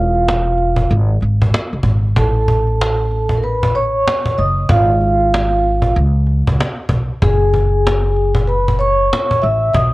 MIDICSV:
0, 0, Header, 1, 4, 480
1, 0, Start_track
1, 0, Tempo, 631579
1, 1646, Time_signature, 4, 2, 24, 8
1, 7552, End_track
2, 0, Start_track
2, 0, Title_t, "Vibraphone"
2, 0, Program_c, 0, 11
2, 0, Note_on_c, 0, 65, 81
2, 0, Note_on_c, 0, 77, 102
2, 659, Note_off_c, 0, 77, 0
2, 660, Note_off_c, 0, 65, 0
2, 1650, Note_on_c, 0, 81, 70
2, 1652, Note_on_c, 0, 69, 82
2, 2535, Note_off_c, 0, 81, 0
2, 2564, Note_on_c, 0, 70, 63
2, 2594, Note_off_c, 0, 69, 0
2, 2606, Note_off_c, 0, 70, 0
2, 2611, Note_on_c, 0, 71, 76
2, 2613, Note_on_c, 0, 83, 59
2, 2833, Note_off_c, 0, 83, 0
2, 2850, Note_on_c, 0, 73, 93
2, 2855, Note_off_c, 0, 71, 0
2, 2855, Note_on_c, 0, 85, 80
2, 3300, Note_off_c, 0, 85, 0
2, 3327, Note_on_c, 0, 75, 85
2, 3333, Note_on_c, 0, 87, 76
2, 3342, Note_off_c, 0, 73, 0
2, 3550, Note_off_c, 0, 75, 0
2, 3553, Note_off_c, 0, 87, 0
2, 3568, Note_on_c, 0, 77, 105
2, 3573, Note_on_c, 0, 65, 81
2, 4496, Note_off_c, 0, 77, 0
2, 4499, Note_off_c, 0, 65, 0
2, 5486, Note_on_c, 0, 68, 90
2, 5491, Note_on_c, 0, 80, 69
2, 6415, Note_off_c, 0, 68, 0
2, 6418, Note_off_c, 0, 80, 0
2, 6440, Note_on_c, 0, 71, 87
2, 6450, Note_on_c, 0, 83, 69
2, 6671, Note_off_c, 0, 83, 0
2, 6679, Note_on_c, 0, 73, 100
2, 6690, Note_off_c, 0, 71, 0
2, 6691, Note_on_c, 0, 85, 88
2, 7138, Note_off_c, 0, 85, 0
2, 7158, Note_on_c, 0, 76, 91
2, 7167, Note_on_c, 0, 88, 79
2, 7177, Note_off_c, 0, 73, 0
2, 7390, Note_off_c, 0, 88, 0
2, 7399, Note_on_c, 0, 75, 98
2, 7409, Note_off_c, 0, 76, 0
2, 7409, Note_on_c, 0, 87, 80
2, 7552, Note_off_c, 0, 75, 0
2, 7552, Note_off_c, 0, 87, 0
2, 7552, End_track
3, 0, Start_track
3, 0, Title_t, "Upright bass"
3, 0, Program_c, 1, 32
3, 0, Note_on_c, 1, 28, 101
3, 656, Note_off_c, 1, 28, 0
3, 689, Note_on_c, 1, 32, 95
3, 906, Note_off_c, 1, 32, 0
3, 929, Note_on_c, 1, 32, 87
3, 1146, Note_off_c, 1, 32, 0
3, 1314, Note_on_c, 1, 29, 71
3, 1390, Note_off_c, 1, 29, 0
3, 1394, Note_on_c, 1, 32, 73
3, 1618, Note_off_c, 1, 32, 0
3, 1646, Note_on_c, 1, 33, 96
3, 3056, Note_off_c, 1, 33, 0
3, 3331, Note_on_c, 1, 30, 82
3, 3547, Note_off_c, 1, 30, 0
3, 3567, Note_on_c, 1, 32, 93
3, 4496, Note_off_c, 1, 32, 0
3, 4531, Note_on_c, 1, 37, 97
3, 4883, Note_off_c, 1, 37, 0
3, 4922, Note_on_c, 1, 37, 80
3, 5003, Note_off_c, 1, 37, 0
3, 5237, Note_on_c, 1, 35, 88
3, 5373, Note_off_c, 1, 35, 0
3, 5487, Note_on_c, 1, 30, 105
3, 6896, Note_off_c, 1, 30, 0
3, 7169, Note_on_c, 1, 33, 81
3, 7386, Note_off_c, 1, 33, 0
3, 7408, Note_on_c, 1, 35, 90
3, 7552, Note_off_c, 1, 35, 0
3, 7552, End_track
4, 0, Start_track
4, 0, Title_t, "Cajon"
4, 111, Note_on_c, 9, 38, 27
4, 187, Note_off_c, 9, 38, 0
4, 216, Note_on_c, 9, 38, 103
4, 292, Note_off_c, 9, 38, 0
4, 440, Note_on_c, 9, 38, 42
4, 516, Note_off_c, 9, 38, 0
4, 580, Note_on_c, 9, 36, 86
4, 656, Note_off_c, 9, 36, 0
4, 681, Note_on_c, 9, 38, 46
4, 757, Note_off_c, 9, 38, 0
4, 919, Note_on_c, 9, 38, 40
4, 995, Note_off_c, 9, 38, 0
4, 1077, Note_on_c, 9, 36, 88
4, 1153, Note_off_c, 9, 36, 0
4, 1172, Note_on_c, 9, 38, 125
4, 1248, Note_off_c, 9, 38, 0
4, 1392, Note_on_c, 9, 36, 96
4, 1468, Note_off_c, 9, 36, 0
4, 1643, Note_on_c, 9, 36, 119
4, 1719, Note_off_c, 9, 36, 0
4, 1885, Note_on_c, 9, 36, 83
4, 1961, Note_off_c, 9, 36, 0
4, 2031, Note_on_c, 9, 38, 26
4, 2107, Note_off_c, 9, 38, 0
4, 2138, Note_on_c, 9, 38, 119
4, 2214, Note_off_c, 9, 38, 0
4, 2366, Note_on_c, 9, 38, 40
4, 2442, Note_off_c, 9, 38, 0
4, 2502, Note_on_c, 9, 36, 87
4, 2578, Note_off_c, 9, 36, 0
4, 2605, Note_on_c, 9, 38, 49
4, 2681, Note_off_c, 9, 38, 0
4, 2758, Note_on_c, 9, 36, 95
4, 2834, Note_off_c, 9, 36, 0
4, 2842, Note_on_c, 9, 38, 38
4, 2918, Note_off_c, 9, 38, 0
4, 3097, Note_on_c, 9, 38, 127
4, 3173, Note_off_c, 9, 38, 0
4, 3234, Note_on_c, 9, 36, 84
4, 3310, Note_off_c, 9, 36, 0
4, 3331, Note_on_c, 9, 38, 35
4, 3407, Note_off_c, 9, 38, 0
4, 3565, Note_on_c, 9, 36, 127
4, 3641, Note_off_c, 9, 36, 0
4, 3809, Note_on_c, 9, 38, 38
4, 3885, Note_off_c, 9, 38, 0
4, 3955, Note_on_c, 9, 38, 28
4, 4031, Note_off_c, 9, 38, 0
4, 4058, Note_on_c, 9, 38, 104
4, 4134, Note_off_c, 9, 38, 0
4, 4285, Note_on_c, 9, 38, 38
4, 4361, Note_off_c, 9, 38, 0
4, 4423, Note_on_c, 9, 36, 86
4, 4499, Note_off_c, 9, 36, 0
4, 4526, Note_on_c, 9, 38, 50
4, 4602, Note_off_c, 9, 38, 0
4, 4763, Note_on_c, 9, 38, 38
4, 4839, Note_off_c, 9, 38, 0
4, 4920, Note_on_c, 9, 36, 94
4, 4996, Note_off_c, 9, 36, 0
4, 5019, Note_on_c, 9, 38, 118
4, 5095, Note_off_c, 9, 38, 0
4, 5235, Note_on_c, 9, 36, 97
4, 5311, Note_off_c, 9, 36, 0
4, 5486, Note_on_c, 9, 36, 116
4, 5562, Note_off_c, 9, 36, 0
4, 5727, Note_on_c, 9, 36, 76
4, 5803, Note_off_c, 9, 36, 0
4, 5874, Note_on_c, 9, 38, 29
4, 5950, Note_off_c, 9, 38, 0
4, 5979, Note_on_c, 9, 38, 111
4, 6055, Note_off_c, 9, 38, 0
4, 6205, Note_on_c, 9, 38, 42
4, 6281, Note_off_c, 9, 38, 0
4, 6343, Note_on_c, 9, 36, 95
4, 6419, Note_off_c, 9, 36, 0
4, 6447, Note_on_c, 9, 38, 47
4, 6523, Note_off_c, 9, 38, 0
4, 6598, Note_on_c, 9, 36, 84
4, 6674, Note_off_c, 9, 36, 0
4, 6682, Note_on_c, 9, 38, 37
4, 6758, Note_off_c, 9, 38, 0
4, 6938, Note_on_c, 9, 38, 119
4, 7014, Note_off_c, 9, 38, 0
4, 7074, Note_on_c, 9, 36, 82
4, 7150, Note_off_c, 9, 36, 0
4, 7172, Note_on_c, 9, 38, 37
4, 7248, Note_off_c, 9, 38, 0
4, 7405, Note_on_c, 9, 36, 118
4, 7481, Note_off_c, 9, 36, 0
4, 7552, End_track
0, 0, End_of_file